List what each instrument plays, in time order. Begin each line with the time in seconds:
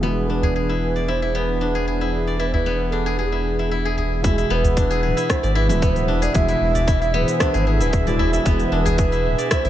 Already playing: sub bass E1, analog synth pad E3 B3 G#4
0.01 felt piano B2 E3 G#3, guzheng B3, analog synth pad D4, ney G#4
0.05 felt piano E4
0.30 guzheng D4, ney B4
0.43 guzheng G#4, udu
0.56 guzheng G#4
0.69 guzheng E4
0.96 guzheng D5
1.08 guzheng E4, ney C5
1.22 guzheng E4
1.35 guzheng B3, ney C5
1.39 ney B4
1.49 shaker
1.61 guzheng D4
1.75 guzheng G#4
1.88 guzheng G#4
2.01 guzheng E4
2.14 ney G#4, shaker
2.27 guzheng D5
2.39 guzheng E4, ney B4
2.48 ney C5
2.54 guzheng E4, ney B4, udu
2.66 guzheng B3
2.92 guzheng D4, ney A4
3.06 guzheng G#4
3.18 ney G#4, guzheng G#4
3.32 guzheng E4
3.59 guzheng E4
3.71 guzheng E4
3.85 guzheng G#4
3.97 guzheng G#4, udu
4.12 shaker
4.22 sub bass E1, felt piano B2 E3 G#3, analog synth pad B2 E3 E4 G#4, guzheng E4, ney G#4, synth texture E5, kick, open hi-hat, shaker
4.26 felt piano E4
4.38 guzheng E4, open hi-hat, shaker
4.50 sub bass E1, guzheng B3, ney C5
4.56 ney B4
4.64 open hi-hat, udu, shaker
4.77 guzheng D4, kick, open hi-hat, shaker
4.91 guzheng G#4, shaker
5.03 sub bass D1, guzheng G#4
5.17 guzheng E4, open hi-hat, shaker
5.30 ney C5, kick, cross-stick, open hi-hat, shaker
5.43 sub bass G#1, guzheng D5, open hi-hat, shaker
5.55 guzheng E4, ney B4
5.68 sub bass D1, felt piano B2 E3 G#3 E4, guzheng E4, open hi-hat, shaker
5.82 guzheng B3, ney C5, kick, open hi-hat, shaker
5.96 open hi-hat, shaker
6.08 sub bass E1, guzheng D4
6.22 guzheng G#4, ney D5, shaker
6.33 sub bass E1, felt piano B2 E3 G#3, guzheng G#4, ney E5, kick, open hi-hat, shaker
6.37 felt piano E4
6.48 guzheng E4, open hi-hat, shaker
6.61 sub bass E1
6.75 guzheng D5, open hi-hat, udu, shaker
6.87 guzheng E4, kick, open hi-hat, shaker
7.01 guzheng E4, shaker
7.14 sub bass D1, guzheng B3, ney C5
7.28 open hi-hat, shaker
7.40 guzheng D4, kick, cross-stick, open hi-hat, shaker
7.54 sub bass G#1, guzheng G#4, open hi-hat, shaker
7.67 guzheng G#4, ney B4
7.74 ney A4
7.80 sub bass D1, guzheng E4, ney B4, open hi-hat, shaker
7.93 kick, open hi-hat, shaker
8.07 felt piano B2 E3 G#3 E4, guzheng D5, open hi-hat, shaker
8.19 sub bass E1, guzheng E4, udu
8.33 guzheng E4, shaker
8.44 sub bass E1, felt piano B2 E3 G#3 E4, guzheng B3, ney G#4, kick, open hi-hat, shaker
8.60 open hi-hat, shaker
8.66 ney C5
8.72 sub bass E1, guzheng D4, ney B4
8.86 guzheng G#4, open hi-hat, udu, shaker
8.98 guzheng G#4, kick, open hi-hat, shaker
9.12 guzheng E4, shaker
9.25 sub bass D1
9.38 guzheng D5, open hi-hat, shaker
9.51 guzheng E4, ney C5, kick, cross-stick, open hi-hat, shaker
9.65 sub bass G#1, guzheng E4, open hi-hat, shaker